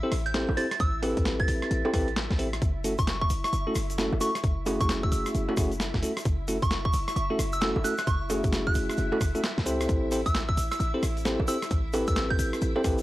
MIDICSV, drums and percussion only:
0, 0, Header, 1, 2, 480
1, 0, Start_track
1, 0, Tempo, 454545
1, 845, Time_signature, 4, 2, 24, 8
1, 13755, End_track
2, 0, Start_track
2, 0, Title_t, "Drums"
2, 123, Note_on_c, 9, 37, 54
2, 123, Note_on_c, 9, 46, 107
2, 229, Note_off_c, 9, 37, 0
2, 229, Note_off_c, 9, 46, 0
2, 274, Note_on_c, 9, 42, 40
2, 362, Note_off_c, 9, 42, 0
2, 362, Note_on_c, 9, 38, 115
2, 362, Note_on_c, 9, 42, 69
2, 468, Note_off_c, 9, 38, 0
2, 468, Note_off_c, 9, 42, 0
2, 513, Note_on_c, 9, 60, 79
2, 604, Note_on_c, 9, 46, 97
2, 619, Note_off_c, 9, 60, 0
2, 710, Note_off_c, 9, 46, 0
2, 754, Note_on_c, 9, 37, 65
2, 754, Note_on_c, 9, 42, 69
2, 844, Note_off_c, 9, 42, 0
2, 844, Note_on_c, 9, 36, 124
2, 844, Note_on_c, 9, 42, 70
2, 859, Note_off_c, 9, 37, 0
2, 949, Note_off_c, 9, 42, 0
2, 950, Note_off_c, 9, 36, 0
2, 1084, Note_on_c, 9, 46, 106
2, 1084, Note_on_c, 9, 60, 81
2, 1189, Note_off_c, 9, 46, 0
2, 1189, Note_off_c, 9, 60, 0
2, 1235, Note_on_c, 9, 36, 102
2, 1235, Note_on_c, 9, 42, 67
2, 1324, Note_off_c, 9, 42, 0
2, 1324, Note_on_c, 9, 38, 118
2, 1324, Note_on_c, 9, 42, 69
2, 1341, Note_off_c, 9, 36, 0
2, 1430, Note_off_c, 9, 38, 0
2, 1430, Note_off_c, 9, 42, 0
2, 1475, Note_on_c, 9, 36, 104
2, 1563, Note_on_c, 9, 46, 104
2, 1581, Note_off_c, 9, 36, 0
2, 1669, Note_off_c, 9, 46, 0
2, 1715, Note_on_c, 9, 37, 59
2, 1715, Note_on_c, 9, 42, 40
2, 1805, Note_off_c, 9, 42, 0
2, 1805, Note_on_c, 9, 42, 72
2, 1821, Note_off_c, 9, 37, 0
2, 1910, Note_off_c, 9, 42, 0
2, 1956, Note_on_c, 9, 60, 84
2, 2044, Note_on_c, 9, 36, 99
2, 2045, Note_on_c, 9, 37, 55
2, 2045, Note_on_c, 9, 46, 109
2, 2061, Note_off_c, 9, 60, 0
2, 2150, Note_off_c, 9, 36, 0
2, 2151, Note_off_c, 9, 37, 0
2, 2151, Note_off_c, 9, 46, 0
2, 2196, Note_on_c, 9, 42, 39
2, 2286, Note_off_c, 9, 42, 0
2, 2286, Note_on_c, 9, 38, 121
2, 2286, Note_on_c, 9, 42, 67
2, 2391, Note_off_c, 9, 38, 0
2, 2391, Note_off_c, 9, 42, 0
2, 2435, Note_on_c, 9, 36, 59
2, 2436, Note_on_c, 9, 38, 60
2, 2524, Note_on_c, 9, 46, 99
2, 2540, Note_off_c, 9, 36, 0
2, 2542, Note_off_c, 9, 38, 0
2, 2630, Note_off_c, 9, 46, 0
2, 2675, Note_on_c, 9, 37, 71
2, 2675, Note_on_c, 9, 42, 67
2, 2764, Note_off_c, 9, 42, 0
2, 2764, Note_on_c, 9, 36, 126
2, 2764, Note_on_c, 9, 42, 65
2, 2769, Note_on_c, 9, 82, 38
2, 2781, Note_off_c, 9, 37, 0
2, 2870, Note_off_c, 9, 36, 0
2, 2870, Note_off_c, 9, 42, 0
2, 2875, Note_off_c, 9, 82, 0
2, 3003, Note_on_c, 9, 46, 110
2, 3007, Note_on_c, 9, 82, 99
2, 3108, Note_off_c, 9, 46, 0
2, 3113, Note_off_c, 9, 82, 0
2, 3151, Note_on_c, 9, 82, 56
2, 3155, Note_on_c, 9, 36, 109
2, 3155, Note_on_c, 9, 42, 64
2, 3246, Note_off_c, 9, 42, 0
2, 3246, Note_on_c, 9, 38, 123
2, 3246, Note_on_c, 9, 42, 67
2, 3248, Note_off_c, 9, 82, 0
2, 3248, Note_on_c, 9, 82, 39
2, 3260, Note_off_c, 9, 36, 0
2, 3351, Note_off_c, 9, 38, 0
2, 3351, Note_off_c, 9, 42, 0
2, 3354, Note_off_c, 9, 82, 0
2, 3395, Note_on_c, 9, 36, 105
2, 3484, Note_on_c, 9, 82, 92
2, 3486, Note_on_c, 9, 46, 101
2, 3500, Note_off_c, 9, 36, 0
2, 3589, Note_off_c, 9, 82, 0
2, 3591, Note_off_c, 9, 46, 0
2, 3636, Note_on_c, 9, 37, 61
2, 3636, Note_on_c, 9, 42, 39
2, 3637, Note_on_c, 9, 82, 55
2, 3725, Note_off_c, 9, 42, 0
2, 3725, Note_on_c, 9, 42, 68
2, 3728, Note_off_c, 9, 82, 0
2, 3728, Note_on_c, 9, 82, 37
2, 3741, Note_off_c, 9, 37, 0
2, 3831, Note_off_c, 9, 42, 0
2, 3834, Note_off_c, 9, 82, 0
2, 3962, Note_on_c, 9, 82, 92
2, 3965, Note_on_c, 9, 37, 54
2, 3965, Note_on_c, 9, 46, 108
2, 4067, Note_off_c, 9, 82, 0
2, 4070, Note_off_c, 9, 37, 0
2, 4070, Note_off_c, 9, 46, 0
2, 4116, Note_on_c, 9, 42, 38
2, 4119, Note_on_c, 9, 82, 57
2, 4202, Note_off_c, 9, 82, 0
2, 4202, Note_on_c, 9, 82, 38
2, 4206, Note_off_c, 9, 42, 0
2, 4206, Note_on_c, 9, 38, 126
2, 4206, Note_on_c, 9, 42, 66
2, 4308, Note_off_c, 9, 82, 0
2, 4312, Note_off_c, 9, 38, 0
2, 4312, Note_off_c, 9, 42, 0
2, 4356, Note_on_c, 9, 60, 74
2, 4444, Note_on_c, 9, 82, 92
2, 4445, Note_on_c, 9, 46, 101
2, 4462, Note_off_c, 9, 60, 0
2, 4550, Note_off_c, 9, 82, 0
2, 4551, Note_off_c, 9, 46, 0
2, 4596, Note_on_c, 9, 37, 71
2, 4596, Note_on_c, 9, 42, 67
2, 4600, Note_on_c, 9, 82, 53
2, 4684, Note_off_c, 9, 82, 0
2, 4684, Note_on_c, 9, 36, 126
2, 4684, Note_on_c, 9, 82, 39
2, 4685, Note_off_c, 9, 42, 0
2, 4685, Note_on_c, 9, 42, 66
2, 4702, Note_off_c, 9, 37, 0
2, 4790, Note_off_c, 9, 36, 0
2, 4790, Note_off_c, 9, 82, 0
2, 4791, Note_off_c, 9, 42, 0
2, 4923, Note_on_c, 9, 82, 100
2, 4926, Note_on_c, 9, 46, 107
2, 4926, Note_on_c, 9, 60, 76
2, 5029, Note_off_c, 9, 82, 0
2, 5031, Note_off_c, 9, 46, 0
2, 5031, Note_off_c, 9, 60, 0
2, 5075, Note_on_c, 9, 36, 109
2, 5075, Note_on_c, 9, 42, 62
2, 5075, Note_on_c, 9, 82, 53
2, 5165, Note_off_c, 9, 42, 0
2, 5165, Note_on_c, 9, 38, 127
2, 5165, Note_on_c, 9, 42, 65
2, 5167, Note_off_c, 9, 82, 0
2, 5167, Note_on_c, 9, 82, 41
2, 5181, Note_off_c, 9, 36, 0
2, 5270, Note_off_c, 9, 38, 0
2, 5270, Note_off_c, 9, 42, 0
2, 5273, Note_off_c, 9, 82, 0
2, 5315, Note_on_c, 9, 36, 112
2, 5404, Note_on_c, 9, 46, 99
2, 5409, Note_on_c, 9, 82, 91
2, 5421, Note_off_c, 9, 36, 0
2, 5510, Note_off_c, 9, 46, 0
2, 5515, Note_off_c, 9, 82, 0
2, 5553, Note_on_c, 9, 82, 57
2, 5555, Note_on_c, 9, 37, 61
2, 5555, Note_on_c, 9, 42, 37
2, 5645, Note_off_c, 9, 42, 0
2, 5645, Note_on_c, 9, 42, 65
2, 5647, Note_off_c, 9, 82, 0
2, 5647, Note_on_c, 9, 82, 44
2, 5661, Note_off_c, 9, 37, 0
2, 5751, Note_off_c, 9, 42, 0
2, 5753, Note_off_c, 9, 82, 0
2, 5795, Note_on_c, 9, 60, 76
2, 5883, Note_on_c, 9, 82, 94
2, 5884, Note_on_c, 9, 36, 109
2, 5884, Note_on_c, 9, 37, 56
2, 5884, Note_on_c, 9, 46, 114
2, 5900, Note_off_c, 9, 60, 0
2, 5989, Note_off_c, 9, 82, 0
2, 5990, Note_off_c, 9, 36, 0
2, 5990, Note_off_c, 9, 37, 0
2, 5990, Note_off_c, 9, 46, 0
2, 6035, Note_on_c, 9, 42, 37
2, 6039, Note_on_c, 9, 82, 56
2, 6124, Note_off_c, 9, 42, 0
2, 6124, Note_on_c, 9, 38, 125
2, 6124, Note_on_c, 9, 42, 64
2, 6129, Note_off_c, 9, 82, 0
2, 6129, Note_on_c, 9, 82, 43
2, 6229, Note_off_c, 9, 38, 0
2, 6229, Note_off_c, 9, 42, 0
2, 6235, Note_off_c, 9, 82, 0
2, 6274, Note_on_c, 9, 38, 63
2, 6275, Note_on_c, 9, 36, 64
2, 6363, Note_on_c, 9, 46, 97
2, 6373, Note_on_c, 9, 82, 101
2, 6380, Note_off_c, 9, 36, 0
2, 6380, Note_off_c, 9, 38, 0
2, 6469, Note_off_c, 9, 46, 0
2, 6479, Note_off_c, 9, 82, 0
2, 6514, Note_on_c, 9, 37, 73
2, 6514, Note_on_c, 9, 42, 65
2, 6524, Note_on_c, 9, 82, 57
2, 6602, Note_off_c, 9, 82, 0
2, 6602, Note_on_c, 9, 82, 44
2, 6604, Note_off_c, 9, 42, 0
2, 6604, Note_on_c, 9, 36, 127
2, 6604, Note_on_c, 9, 42, 67
2, 6620, Note_off_c, 9, 37, 0
2, 6708, Note_off_c, 9, 82, 0
2, 6709, Note_off_c, 9, 36, 0
2, 6709, Note_off_c, 9, 42, 0
2, 6843, Note_on_c, 9, 46, 105
2, 6843, Note_on_c, 9, 82, 102
2, 6948, Note_off_c, 9, 46, 0
2, 6948, Note_off_c, 9, 82, 0
2, 6994, Note_on_c, 9, 36, 114
2, 6994, Note_on_c, 9, 42, 59
2, 7000, Note_on_c, 9, 82, 51
2, 7079, Note_off_c, 9, 82, 0
2, 7079, Note_on_c, 9, 82, 39
2, 7083, Note_off_c, 9, 42, 0
2, 7083, Note_on_c, 9, 38, 127
2, 7083, Note_on_c, 9, 42, 64
2, 7100, Note_off_c, 9, 36, 0
2, 7185, Note_off_c, 9, 82, 0
2, 7188, Note_off_c, 9, 38, 0
2, 7188, Note_off_c, 9, 42, 0
2, 7234, Note_on_c, 9, 36, 117
2, 7319, Note_on_c, 9, 82, 104
2, 7323, Note_on_c, 9, 46, 94
2, 7340, Note_off_c, 9, 36, 0
2, 7425, Note_off_c, 9, 82, 0
2, 7429, Note_off_c, 9, 46, 0
2, 7475, Note_on_c, 9, 37, 61
2, 7475, Note_on_c, 9, 42, 36
2, 7476, Note_on_c, 9, 82, 51
2, 7564, Note_off_c, 9, 42, 0
2, 7564, Note_off_c, 9, 82, 0
2, 7564, Note_on_c, 9, 42, 67
2, 7564, Note_on_c, 9, 82, 42
2, 7581, Note_off_c, 9, 37, 0
2, 7669, Note_off_c, 9, 42, 0
2, 7669, Note_off_c, 9, 82, 0
2, 7804, Note_on_c, 9, 37, 54
2, 7804, Note_on_c, 9, 46, 108
2, 7810, Note_on_c, 9, 82, 101
2, 7909, Note_off_c, 9, 37, 0
2, 7909, Note_off_c, 9, 46, 0
2, 7916, Note_off_c, 9, 82, 0
2, 7947, Note_on_c, 9, 82, 56
2, 7953, Note_on_c, 9, 42, 36
2, 8036, Note_off_c, 9, 82, 0
2, 8036, Note_on_c, 9, 82, 43
2, 8043, Note_off_c, 9, 42, 0
2, 8043, Note_on_c, 9, 38, 125
2, 8043, Note_on_c, 9, 42, 63
2, 8141, Note_off_c, 9, 82, 0
2, 8149, Note_off_c, 9, 38, 0
2, 8149, Note_off_c, 9, 42, 0
2, 8194, Note_on_c, 9, 60, 78
2, 8284, Note_on_c, 9, 46, 89
2, 8288, Note_on_c, 9, 82, 102
2, 8300, Note_off_c, 9, 60, 0
2, 8389, Note_off_c, 9, 46, 0
2, 8393, Note_off_c, 9, 82, 0
2, 8423, Note_on_c, 9, 82, 59
2, 8433, Note_on_c, 9, 37, 70
2, 8433, Note_on_c, 9, 42, 61
2, 8523, Note_off_c, 9, 82, 0
2, 8523, Note_on_c, 9, 36, 127
2, 8523, Note_on_c, 9, 82, 44
2, 8524, Note_off_c, 9, 42, 0
2, 8524, Note_on_c, 9, 42, 66
2, 8539, Note_off_c, 9, 37, 0
2, 8628, Note_off_c, 9, 82, 0
2, 8629, Note_off_c, 9, 36, 0
2, 8629, Note_off_c, 9, 42, 0
2, 8764, Note_on_c, 9, 46, 101
2, 8764, Note_on_c, 9, 60, 82
2, 8765, Note_on_c, 9, 82, 101
2, 8869, Note_off_c, 9, 46, 0
2, 8869, Note_off_c, 9, 60, 0
2, 8870, Note_off_c, 9, 82, 0
2, 8911, Note_on_c, 9, 82, 54
2, 8914, Note_on_c, 9, 36, 109
2, 8914, Note_on_c, 9, 42, 63
2, 9003, Note_off_c, 9, 42, 0
2, 9003, Note_on_c, 9, 38, 127
2, 9003, Note_on_c, 9, 42, 69
2, 9005, Note_off_c, 9, 82, 0
2, 9005, Note_on_c, 9, 82, 42
2, 9019, Note_off_c, 9, 36, 0
2, 9109, Note_off_c, 9, 38, 0
2, 9109, Note_off_c, 9, 42, 0
2, 9111, Note_off_c, 9, 82, 0
2, 9154, Note_on_c, 9, 36, 107
2, 9234, Note_on_c, 9, 82, 92
2, 9243, Note_on_c, 9, 46, 92
2, 9260, Note_off_c, 9, 36, 0
2, 9339, Note_off_c, 9, 82, 0
2, 9349, Note_off_c, 9, 46, 0
2, 9394, Note_on_c, 9, 37, 57
2, 9394, Note_on_c, 9, 42, 38
2, 9399, Note_on_c, 9, 82, 59
2, 9471, Note_off_c, 9, 82, 0
2, 9471, Note_on_c, 9, 82, 38
2, 9484, Note_off_c, 9, 42, 0
2, 9484, Note_on_c, 9, 42, 69
2, 9500, Note_off_c, 9, 37, 0
2, 9576, Note_off_c, 9, 82, 0
2, 9589, Note_off_c, 9, 42, 0
2, 9635, Note_on_c, 9, 60, 82
2, 9723, Note_on_c, 9, 36, 108
2, 9725, Note_on_c, 9, 37, 51
2, 9725, Note_on_c, 9, 46, 102
2, 9727, Note_on_c, 9, 82, 86
2, 9741, Note_off_c, 9, 60, 0
2, 9829, Note_off_c, 9, 36, 0
2, 9831, Note_off_c, 9, 37, 0
2, 9831, Note_off_c, 9, 46, 0
2, 9833, Note_off_c, 9, 82, 0
2, 9876, Note_on_c, 9, 42, 37
2, 9876, Note_on_c, 9, 82, 56
2, 9965, Note_off_c, 9, 42, 0
2, 9965, Note_on_c, 9, 38, 124
2, 9965, Note_on_c, 9, 42, 64
2, 9967, Note_off_c, 9, 82, 0
2, 9967, Note_on_c, 9, 82, 39
2, 10071, Note_off_c, 9, 38, 0
2, 10071, Note_off_c, 9, 42, 0
2, 10072, Note_off_c, 9, 82, 0
2, 10114, Note_on_c, 9, 36, 62
2, 10117, Note_on_c, 9, 38, 66
2, 10205, Note_on_c, 9, 82, 97
2, 10206, Note_on_c, 9, 46, 92
2, 10220, Note_off_c, 9, 36, 0
2, 10222, Note_off_c, 9, 38, 0
2, 10310, Note_off_c, 9, 82, 0
2, 10311, Note_off_c, 9, 46, 0
2, 10355, Note_on_c, 9, 82, 50
2, 10357, Note_on_c, 9, 37, 67
2, 10357, Note_on_c, 9, 42, 64
2, 10442, Note_off_c, 9, 82, 0
2, 10442, Note_on_c, 9, 82, 41
2, 10444, Note_on_c, 9, 36, 126
2, 10445, Note_off_c, 9, 42, 0
2, 10445, Note_on_c, 9, 42, 68
2, 10462, Note_off_c, 9, 37, 0
2, 10548, Note_off_c, 9, 82, 0
2, 10549, Note_off_c, 9, 36, 0
2, 10551, Note_off_c, 9, 42, 0
2, 10681, Note_on_c, 9, 82, 94
2, 10687, Note_on_c, 9, 46, 105
2, 10787, Note_off_c, 9, 82, 0
2, 10792, Note_off_c, 9, 46, 0
2, 10834, Note_on_c, 9, 36, 106
2, 10837, Note_on_c, 9, 42, 64
2, 10837, Note_on_c, 9, 82, 57
2, 10926, Note_off_c, 9, 42, 0
2, 10926, Note_on_c, 9, 38, 126
2, 10926, Note_on_c, 9, 42, 69
2, 10928, Note_off_c, 9, 82, 0
2, 10928, Note_on_c, 9, 82, 39
2, 10940, Note_off_c, 9, 36, 0
2, 11032, Note_off_c, 9, 38, 0
2, 11032, Note_off_c, 9, 42, 0
2, 11033, Note_off_c, 9, 82, 0
2, 11074, Note_on_c, 9, 36, 107
2, 11167, Note_on_c, 9, 46, 91
2, 11167, Note_on_c, 9, 82, 101
2, 11180, Note_off_c, 9, 36, 0
2, 11272, Note_off_c, 9, 46, 0
2, 11272, Note_off_c, 9, 82, 0
2, 11314, Note_on_c, 9, 82, 56
2, 11317, Note_on_c, 9, 37, 58
2, 11317, Note_on_c, 9, 42, 37
2, 11404, Note_off_c, 9, 82, 0
2, 11404, Note_on_c, 9, 82, 42
2, 11406, Note_off_c, 9, 42, 0
2, 11406, Note_on_c, 9, 42, 69
2, 11422, Note_off_c, 9, 37, 0
2, 11509, Note_off_c, 9, 82, 0
2, 11512, Note_off_c, 9, 42, 0
2, 11645, Note_on_c, 9, 37, 51
2, 11645, Note_on_c, 9, 46, 103
2, 11649, Note_on_c, 9, 82, 97
2, 11751, Note_off_c, 9, 37, 0
2, 11751, Note_off_c, 9, 46, 0
2, 11754, Note_off_c, 9, 82, 0
2, 11795, Note_on_c, 9, 42, 37
2, 11802, Note_on_c, 9, 82, 52
2, 11882, Note_off_c, 9, 82, 0
2, 11882, Note_on_c, 9, 82, 44
2, 11884, Note_off_c, 9, 42, 0
2, 11884, Note_on_c, 9, 38, 118
2, 11884, Note_on_c, 9, 42, 67
2, 11988, Note_off_c, 9, 82, 0
2, 11989, Note_off_c, 9, 38, 0
2, 11989, Note_off_c, 9, 42, 0
2, 12035, Note_on_c, 9, 60, 88
2, 12120, Note_on_c, 9, 82, 95
2, 12124, Note_on_c, 9, 46, 90
2, 12140, Note_off_c, 9, 60, 0
2, 12226, Note_off_c, 9, 82, 0
2, 12230, Note_off_c, 9, 46, 0
2, 12274, Note_on_c, 9, 82, 50
2, 12275, Note_on_c, 9, 37, 66
2, 12275, Note_on_c, 9, 42, 66
2, 12363, Note_on_c, 9, 36, 118
2, 12365, Note_off_c, 9, 42, 0
2, 12365, Note_on_c, 9, 42, 71
2, 12380, Note_off_c, 9, 82, 0
2, 12381, Note_off_c, 9, 37, 0
2, 12469, Note_off_c, 9, 36, 0
2, 12470, Note_off_c, 9, 42, 0
2, 12599, Note_on_c, 9, 82, 83
2, 12604, Note_on_c, 9, 46, 108
2, 12604, Note_on_c, 9, 60, 84
2, 12704, Note_off_c, 9, 82, 0
2, 12710, Note_off_c, 9, 46, 0
2, 12710, Note_off_c, 9, 60, 0
2, 12748, Note_on_c, 9, 82, 47
2, 12753, Note_on_c, 9, 42, 70
2, 12754, Note_on_c, 9, 36, 104
2, 12838, Note_off_c, 9, 82, 0
2, 12838, Note_on_c, 9, 82, 40
2, 12843, Note_off_c, 9, 42, 0
2, 12843, Note_on_c, 9, 38, 122
2, 12843, Note_on_c, 9, 42, 73
2, 12860, Note_off_c, 9, 36, 0
2, 12944, Note_off_c, 9, 82, 0
2, 12949, Note_off_c, 9, 38, 0
2, 12949, Note_off_c, 9, 42, 0
2, 12994, Note_on_c, 9, 36, 104
2, 13082, Note_on_c, 9, 46, 93
2, 13084, Note_on_c, 9, 82, 96
2, 13100, Note_off_c, 9, 36, 0
2, 13188, Note_off_c, 9, 46, 0
2, 13190, Note_off_c, 9, 82, 0
2, 13234, Note_on_c, 9, 37, 58
2, 13234, Note_on_c, 9, 42, 39
2, 13237, Note_on_c, 9, 82, 49
2, 13321, Note_off_c, 9, 82, 0
2, 13321, Note_on_c, 9, 82, 36
2, 13324, Note_off_c, 9, 42, 0
2, 13324, Note_on_c, 9, 42, 70
2, 13340, Note_off_c, 9, 37, 0
2, 13426, Note_off_c, 9, 82, 0
2, 13429, Note_off_c, 9, 42, 0
2, 13475, Note_on_c, 9, 60, 85
2, 13563, Note_on_c, 9, 36, 108
2, 13563, Note_on_c, 9, 37, 53
2, 13563, Note_on_c, 9, 46, 113
2, 13565, Note_on_c, 9, 82, 87
2, 13580, Note_off_c, 9, 60, 0
2, 13668, Note_off_c, 9, 37, 0
2, 13668, Note_off_c, 9, 46, 0
2, 13669, Note_off_c, 9, 36, 0
2, 13671, Note_off_c, 9, 82, 0
2, 13710, Note_on_c, 9, 82, 49
2, 13714, Note_on_c, 9, 42, 39
2, 13755, Note_off_c, 9, 42, 0
2, 13755, Note_off_c, 9, 82, 0
2, 13755, End_track
0, 0, End_of_file